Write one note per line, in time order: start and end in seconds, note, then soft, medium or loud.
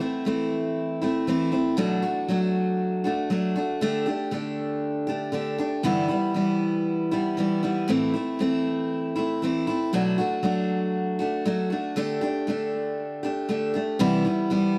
0.00 0.25 A3 soft
0.00 0.25 C4 soft
0.00 0.24 E4 soft
0.25 1.01 E3 soft
0.25 1.03 A3 medium
0.25 1.01 C4 medium
0.25 1.00 E4 medium
1.02 1.27 A3 soft
1.02 1.27 C4 soft
1.02 1.27 E4 medium
1.27 1.52 E3 medium
1.27 1.53 A3 medium
1.27 1.52 C4 medium
1.27 1.50 E4 medium
1.52 1.76 A3 soft
1.52 1.78 C4 soft
1.52 1.77 E4 soft
1.77 2.03 B2 medium
1.77 2.03 F#3 medium
1.77 2.03 A3 medium
1.77 2.02 D4 medium
1.77 2.01 F#4 medium
2.02 2.28 A3 soft
2.02 2.29 D4 soft
2.02 2.28 F#4 medium
2.28 3.05 F#3 medium
2.28 3.06 A3 soft
2.28 3.05 D4 medium
2.28 3.03 F#4 medium
3.04 3.29 A3 soft
3.04 3.30 D4 soft
3.04 3.30 F#4 soft
3.30 3.55 F#3 soft
3.30 3.56 A3 medium
3.30 3.56 D4 medium
3.30 3.54 F#4 medium
3.56 3.81 A3 soft
3.56 3.81 D4 soft
3.56 3.81 F#4 soft
3.81 4.07 D3 medium
3.81 4.07 A3 medium
3.81 4.06 D4 medium
3.81 4.05 G4 medium
4.06 4.31 A3 soft
4.06 4.32 D4 soft
4.06 4.32 G4 soft
4.31 5.32 D3 medium
4.31 5.08 A3 medium
4.31 5.08 D4 medium
4.31 5.06 G4 medium
5.07 5.32 A3 soft
5.07 5.33 D4 soft
5.07 5.33 G4 soft
5.32 5.58 D3 medium
5.32 5.59 A3 medium
5.32 5.58 D4 medium
5.32 5.57 G4 medium
5.58 5.84 A3 soft
5.58 5.84 D4 soft
5.58 5.84 G4 soft
5.83 6.10 G2 medium
5.83 6.10 D3 medium
5.83 6.10 E3 medium
5.83 6.09 G3 medium
5.83 6.08 B3 medium
5.83 6.07 E4 medium
6.08 6.33 E3 soft
6.08 6.34 G3 soft
6.08 6.35 B3 soft
6.08 6.35 E4 medium
6.34 7.13 E3 soft
6.34 7.12 G3 soft
6.34 7.11 B3 medium
6.34 7.11 E4 medium
7.11 7.36 E3 soft
7.11 7.37 G3 soft
7.11 7.37 B3 medium
7.11 7.37 E4 medium
7.37 7.63 E3 medium
7.37 7.63 G3 medium
7.37 7.62 B3 medium
7.37 7.61 E4 medium
7.63 7.87 E3 soft
7.63 7.89 G3 soft
7.63 7.89 B3 soft
7.63 7.88 E4 soft
7.88 8.14 A2 medium
7.88 8.14 E3 medium
7.88 8.14 A3 medium
7.88 8.14 C4 medium
7.88 8.12 E4 medium
8.14 8.39 A3 soft
8.14 8.39 C4 soft
8.14 8.39 E4 soft
8.39 9.16 E3 medium
8.39 9.18 A3 medium
8.39 9.16 C4 medium
8.39 9.14 E4 medium
9.16 9.42 A3 soft
9.16 9.42 C4 soft
9.16 9.41 E4 medium
9.42 9.67 E3 medium
9.42 9.68 A3 medium
9.42 9.68 C4 medium
9.42 9.66 E4 medium
9.67 9.93 A3 soft
9.67 9.94 C4 soft
9.67 9.93 E4 medium
9.93 10.18 B2 medium
9.93 10.18 F#3 medium
9.93 10.19 A3 medium
9.93 10.18 D4 medium
9.93 10.17 F#4 medium
10.18 10.42 A3 soft
10.18 10.44 D4 soft
10.18 10.43 F#4 medium
10.43 11.20 F#3 medium
10.43 11.21 A3 medium
10.43 11.20 D4 medium
10.43 11.18 F#4 medium
11.19 11.44 A3 soft
11.19 11.45 D4 soft
11.19 11.45 F#4 medium
11.45 11.71 F#3 medium
11.45 11.71 A3 medium
11.45 11.71 D4 medium
11.45 11.69 F#4 medium
11.70 11.95 A3 soft
11.70 11.96 D4 soft
11.70 11.96 F#4 soft
11.96 12.22 D3 medium
11.96 12.22 A3 medium
11.96 12.21 D4 medium
11.96 12.20 G4 medium
12.21 12.47 A3 soft
12.21 12.48 D4 soft
12.21 12.47 G4 medium
12.47 13.24 D3 medium
12.47 13.24 A3 medium
12.47 13.23 D4 medium
12.47 13.23 G4 medium
13.23 13.48 A3 soft
13.23 13.49 D4 soft
13.23 13.49 G4 medium
13.49 13.75 D3 medium
13.49 13.75 A3 medium
13.49 13.74 D4 medium
13.49 13.72 G4 medium
13.74 14.00 A3 soft
13.74 14.00 D4 soft
13.74 14.00 G4 soft
13.99 14.25 C3 medium
13.99 14.26 E3 medium
13.99 14.26 G3 medium
13.99 14.25 B3 medium
13.99 14.23 E4 loud
14.25 14.50 G3 soft
14.25 14.50 B3 soft
14.25 14.51 E4 medium
14.50 14.79 E3 medium
14.50 14.79 G3 medium
14.50 14.79 B3 medium
14.50 14.79 E4 medium